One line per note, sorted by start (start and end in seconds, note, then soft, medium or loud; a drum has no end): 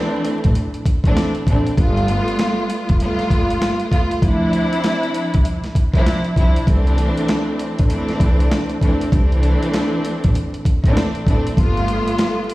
0.00 0.88 E3 loud
0.00 0.88 A3 medium
0.00 0.89 C4 medium
0.00 0.89 D4 loud
0.25 closed hi-hat medium
0.44 0.54 A1 medium
0.44 kick medium
0.44 closed hi-hat medium
0.55 closed hi-hat loud
0.74 closed hi-hat soft
0.86 kick medium
0.86 closed hi-hat medium
1.04 1.14 A1 medium
1.04 1.44 E3 medium
1.04 1.45 A3 medium
1.04 1.45 C4 medium
1.04 1.45 D4 loud
1.04 kick loud
1.04 closed hi-hat medium
1.17 snare loud
1.17 closed hi-hat medium
1.35 closed hi-hat soft
1.47 1.63 A1 medium
1.47 1.76 E3 medium
1.47 1.77 A3 medium
1.47 1.77 C4 medium
1.47 1.77 D4 medium
1.47 kick medium
1.47 closed hi-hat medium
1.66 closed hi-hat medium
1.77 2.19 G1 loud
1.77 2.93 G3 medium
1.77 2.93 A3 medium
1.77 2.93 B3 medium
1.77 2.94 F4 loud
1.77 kick loud
1.77 closed hi-hat medium
1.97 closed hi-hat soft
2.08 closed hi-hat medium
2.28 closed hi-hat medium
2.39 snare loud
2.39 closed hi-hat medium
2.70 closed hi-hat medium
2.89 2.99 F1 medium
2.89 kick medium
2.89 closed hi-hat medium
3.00 3.86 G3 loud
3.00 3.87 A3 medium
3.00 3.87 B3 medium
3.00 3.87 F4 loud
3.00 closed hi-hat loud
3.19 snare soft
3.19 closed hi-hat soft
3.30 3.56 G1 medium
3.30 kick medium
3.30 closed hi-hat medium
3.50 closed hi-hat medium
3.62 snare loud
3.62 closed hi-hat medium
3.80 closed hi-hat soft
3.91 4.20 G3 medium
3.91 4.21 A3 medium
3.91 4.21 B3 medium
3.91 4.21 F4 medium
3.91 kick medium
3.91 closed hi-hat medium
4.11 closed hi-hat medium
4.22 4.63 D2 loud
4.22 5.78 F3 loud
4.22 5.78 C4 medium
4.22 5.78 D4 medium
4.22 5.79 E4 loud
4.22 kick loud
4.22 closed hi-hat medium
4.53 closed hi-hat medium
4.73 closed hi-hat medium
4.84 snare loud
4.84 closed hi-hat medium
5.03 closed hi-hat soft
5.14 closed hi-hat medium
5.34 5.44 C2 medium
5.34 kick medium
5.34 closed hi-hat medium
5.45 closed hi-hat loud
5.64 snare soft
5.64 closed hi-hat soft
5.75 kick medium
5.75 closed hi-hat medium
5.94 6.04 C2 medium
5.94 6.34 F3 loud
5.94 6.34 C4 medium
5.94 6.35 D4 medium
5.94 6.35 E4 loud
5.94 kick loud
5.94 closed hi-hat medium
6.06 snare loud
6.06 closed hi-hat medium
6.25 closed hi-hat soft
6.36 6.52 C2 medium
6.36 6.65 F3 medium
6.36 6.66 C4 medium
6.36 6.66 D4 medium
6.36 6.66 E4 medium
6.36 kick medium
6.36 closed hi-hat medium
6.56 closed hi-hat medium
6.67 7.08 C2 loud
6.67 7.82 E3 loud
6.67 7.83 A3 medium
6.67 7.83 C4 medium
6.67 7.83 D4 loud
6.67 kick loud
6.67 closed hi-hat medium
6.87 closed hi-hat soft
6.98 closed hi-hat medium
7.17 closed hi-hat medium
7.28 snare loud
7.28 closed hi-hat medium
7.59 closed hi-hat medium
7.79 7.89 A1 medium
7.79 kick medium
7.79 closed hi-hat medium
7.90 8.76 E3 loud
7.90 8.76 A3 medium
7.90 8.77 C4 medium
7.90 8.77 D4 loud
7.90 closed hi-hat loud
8.09 snare soft
8.09 closed hi-hat soft
8.20 8.46 C2 medium
8.20 kick medium
8.20 closed hi-hat medium
8.40 closed hi-hat medium
8.52 snare loud
8.52 closed hi-hat medium
8.69 closed hi-hat soft
8.81 9.11 E3 medium
8.81 9.11 A3 medium
8.81 9.11 C4 medium
8.81 9.12 D4 medium
8.81 kick medium
8.81 closed hi-hat medium
9.01 closed hi-hat medium
9.12 9.53 C2 loud
9.12 10.68 E3 loud
9.12 10.68 A3 medium
9.12 10.68 C4 medium
9.12 10.68 D4 loud
9.12 kick loud
9.12 closed hi-hat medium
9.32 closed hi-hat soft
9.43 closed hi-hat medium
9.63 closed hi-hat medium
9.74 snare loud
9.74 closed hi-hat medium
10.05 closed hi-hat medium
10.24 10.34 A1 medium
10.24 kick medium
10.24 closed hi-hat medium
10.35 closed hi-hat loud
10.54 closed hi-hat soft
10.65 kick medium
10.65 closed hi-hat medium
10.84 10.94 A1 medium
10.84 11.24 E3 loud
10.84 11.24 A3 medium
10.84 11.25 C4 medium
10.84 11.25 D4 loud
10.84 kick loud
10.84 closed hi-hat medium
10.97 snare loud
10.97 closed hi-hat medium
11.15 closed hi-hat soft
11.27 11.42 A1 medium
11.27 11.56 E3 medium
11.27 11.56 A3 medium
11.27 11.57 C4 medium
11.27 11.57 D4 medium
11.27 kick medium
11.27 closed hi-hat medium
11.47 closed hi-hat medium
11.57 11.98 G1 loud
11.57 12.54 G3 medium
11.57 12.54 A3 medium
11.57 12.54 B3 medium
11.57 12.54 F4 loud
11.57 kick loud
11.57 closed hi-hat medium
11.77 closed hi-hat soft
11.88 closed hi-hat medium
12.08 closed hi-hat soft
12.18 snare loud
12.18 closed hi-hat medium
12.49 closed hi-hat medium